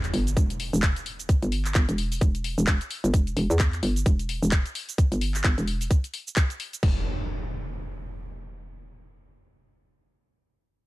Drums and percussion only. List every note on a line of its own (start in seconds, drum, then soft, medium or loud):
0.03 clap soft
0.03 closed hi-hat medium
0.03 cabasa soft
0.14 open hi-hat loud
0.27 closed hi-hat soft
0.27 cabasa medium
0.37 kick loud
0.37 closed hi-hat medium
0.37 cabasa medium
0.50 closed hi-hat medium
0.50 cabasa soft
0.60 open hi-hat loud
0.74 cabasa medium
0.82 kick loud
0.82 clap loud
0.82 closed hi-hat medium
0.82 cabasa medium
0.96 closed hi-hat medium
0.96 cabasa soft
1.06 open hi-hat loud
1.19 closed hi-hat soft
1.19 cabasa medium
1.29 kick loud
1.29 closed hi-hat medium
1.29 cabasa medium
1.42 closed hi-hat medium
1.42 cabasa soft
1.52 open hi-hat loud
1.65 clap soft
1.65 closed hi-hat soft
1.65 cabasa medium
1.75 kick loud
1.75 clap loud
1.75 closed hi-hat medium
1.75 cabasa medium
1.89 closed hi-hat medium
1.89 cabasa soft
1.98 open hi-hat loud
2.12 open hi-hat medium
2.12 cabasa medium
2.21 kick loud
2.21 closed hi-hat medium
2.21 cabasa medium
2.35 closed hi-hat medium
2.35 cabasa soft
2.44 open hi-hat loud
2.58 cabasa medium
2.67 kick loud
2.67 clap loud
2.67 closed hi-hat medium
2.67 cabasa medium
2.81 closed hi-hat medium
2.81 cabasa soft
2.91 open hi-hat loud
3.04 closed hi-hat soft
3.04 cabasa medium
3.14 kick loud
3.14 closed hi-hat medium
3.14 cabasa medium
3.27 closed hi-hat medium
3.27 cabasa soft
3.37 open hi-hat loud
3.51 cabasa medium
3.59 kick loud
3.59 clap loud
3.59 closed hi-hat medium
3.59 cabasa medium
3.73 clap soft
3.73 closed hi-hat soft
3.73 cabasa soft
3.83 open hi-hat loud
3.96 closed hi-hat soft
3.96 cabasa medium
4.06 kick loud
4.06 closed hi-hat medium
4.06 cabasa medium
4.19 closed hi-hat soft
4.19 cabasa soft
4.29 open hi-hat loud
4.43 cabasa medium
4.52 kick loud
4.52 clap loud
4.52 closed hi-hat medium
4.52 cabasa medium
4.66 closed hi-hat soft
4.66 cabasa soft
4.75 open hi-hat loud
4.89 closed hi-hat soft
4.89 cabasa medium
4.98 kick loud
4.98 closed hi-hat medium
4.98 cabasa medium
5.12 closed hi-hat soft
5.12 cabasa soft
5.21 open hi-hat loud
5.34 clap soft
5.34 closed hi-hat soft
5.34 cabasa medium
5.44 kick loud
5.44 clap loud
5.44 closed hi-hat medium
5.44 cabasa medium
5.58 closed hi-hat soft
5.58 cabasa soft
5.67 open hi-hat loud
5.81 open hi-hat medium
5.81 cabasa medium
5.91 kick loud
5.91 closed hi-hat medium
5.91 cabasa medium
6.04 closed hi-hat soft
6.04 cabasa soft
6.14 open hi-hat loud
6.28 cabasa medium
6.36 kick loud
6.36 clap loud
6.36 closed hi-hat medium
6.36 cabasa medium
6.50 closed hi-hat soft
6.50 cabasa soft
6.60 open hi-hat loud
6.73 closed hi-hat soft
6.73 cabasa medium
6.83 kick loud
6.83 crash medium